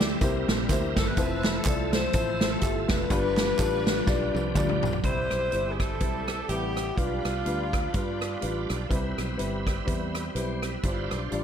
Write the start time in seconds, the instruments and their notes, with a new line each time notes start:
Already playing: fingered electric bass D2, tonewheel organ G3 C4 E4 A4, saxophone section E4 G4
0.00 snare, closed hi-hat, tambourine
0.21 fingered electric bass C2, grand piano C3 A#3 E4 G4 C5, tonewheel organ G3 C4 E4 A#4, kick, closed hi-hat, tambourine
0.48 fingered electric bass A#1, snare, closed hi-hat, tambourine
0.69 fingered electric bass D2, grand piano A#3 E4 G4 C5, kick, clap, closed hi-hat, tambourine
0.96 fingered electric bass G1, saxophone section A4, kick, snare, closed hi-hat, tambourine
1.07 saxophone section E4 B4
1.17 fingered electric bass F1, tonewheel organ F3 C4 G#4 E5, grand piano F3 A3 C4 E4, kick, closed hi-hat, tambourine
1.23 tonewheel organ A4
1.44 snare, clap, closed hi-hat, tambourine
1.56 saxophone section A4
1.65 fingered electric bass C2, grand piano F3 A3 E4 D5, saxophone section A4, kick, clap, closed hi-hat, tambourine
1.93 saxophone section E4 A4 C5, snare, closed hi-hat, tambourine
2.13 fingered electric bass A1, grand piano F3 A3 E4 C5, kick, closed hi-hat, tambourine
2.41 snare, closed hi-hat, tambourine
2.52 saxophone section A4
2.61 fingered electric bass G1, grand piano A3 E4 F4 G4, saxophone section A4, kick, clap, closed hi-hat, tambourine
2.89 fingered electric bass F1, saxophone section D4 F4 B4, kick, snare, closed hi-hat, tambourine
3.10 fingered electric bass G1, grand piano G2 G3 D4 F4 B4, tonewheel organ F3 B3 D4 G4, kick, closed hi-hat, tambourine
3.37 snare, clap, closed hi-hat, tambourine
3.58 fingered electric bass A1, grand piano G3 D4 F4 A4, kick, clap, closed hi-hat, tambourine
3.87 snare, closed hi-hat, tambourine
4.06 fingered electric bass B1, grand piano G3 D4 F4 D5, kick, snare, tambourine
4.34 fingered electric bass C2, high tom, tambourine
4.54 fingered electric bass D2, grand piano G3 D4 F4 D5, kick, clap, mid tom, tambourine
4.69 mid tom
4.83 fingered electric bass B1, floor tom, tambourine
4.93 floor tom
5.03 fingered electric bass C2, grand piano C3 G3 C4 E4 B5, tonewheel organ G3 D#4 G4, saxophone section E4 G4 C5, alto saxophone C5, kick, closed hi-hat
5.10 tonewheel organ E4
5.31 fingered electric bass B1, cross-stick, closed hi-hat
5.52 fingered electric bass G1, grand piano G3 C4 E4 C5, closed hi-hat
5.71 alto saxophone G#4
5.79 saxophone section E4 A4, alto saxophone A4, kick, cross-stick, closed hi-hat
6.00 fingered electric bass B1, grand piano G3 C4 E4 A4, kick, closed hi-hat
6.28 cross-stick, closed hi-hat
6.48 fingered electric bass A1, grand piano C3 G3 E4 B4, saxophone section B3 E4 G4, alto saxophone G4, closed hi-hat
6.77 cross-stick, closed hi-hat
6.96 fingered electric bass B1, grand piano B2 G3 D4 F4 B4, tonewheel organ G3 D4 F4 B4, saxophone section D4 F4, alto saxophone F4, kick, closed hi-hat
7.25 fingered electric bass C2, cross-stick, closed hi-hat
7.45 fingered electric bass D2, grand piano G3 D4 F4 B4, closed hi-hat
7.73 kick, cross-stick, closed hi-hat
7.93 fingered electric bass G2, grand piano G3 D4 F4 B4, saxophone section D4 F4, alto saxophone F4, kick, closed hi-hat
8.21 cross-stick, closed hi-hat
8.40 fingered electric bass A1, grand piano G3 D4 F4 B4, closed hi-hat
8.70 fingered electric bass B1, cross-stick, closed hi-hat
8.88 fingered electric bass C2, grand piano C3 G3 C4 E4 B4, tonewheel organ G3 C4 E4 B4, kick, closed hi-hat
9.18 fingered electric bass B1, cross-stick, closed hi-hat
9.37 fingered electric bass G1, grand piano G3 C4 E4 B4, closed hi-hat
9.67 kick, cross-stick, closed hi-hat
9.86 fingered electric bass E2, grand piano G3 C4 E4 B4, kick, closed hi-hat
10.15 cross-stick, closed hi-hat
10.35 fingered electric bass B1, grand piano G3 C4 E4 B4, tonewheel organ G4 C5, closed hi-hat
10.62 tonewheel organ E4 B4, cross-stick, closed hi-hat
10.83 fingered electric bass G1, grand piano G2 G3 D4 F4 C5, tonewheel organ G3 D4 F4 C5, kick, closed hi-hat
11.11 fingered electric bass B1, cross-stick, closed hi-hat
11.31 fingered electric bass A1, grand piano G3 D4 F4 D5, closed hi-hat